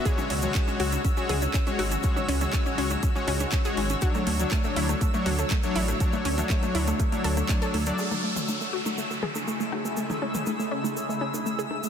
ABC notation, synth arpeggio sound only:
X:1
M:4/4
L:1/16
Q:1/4=121
K:A
V:1 name="Synth arpeggio sound"
G C C z C C F C C C G C C C F C | C C C C C C C C C C C C C G C C | F A, A, z A, A, E A, A, A, F A, A, A, E A, | A, A, C A, A, A, E A, A, A, A A, A, A A, A, |
G A, A, z A, A, F A, A, A, G A, A, A, F A, | A, A, C A, A, A, C A, A, A, C A, A, G A, A, |]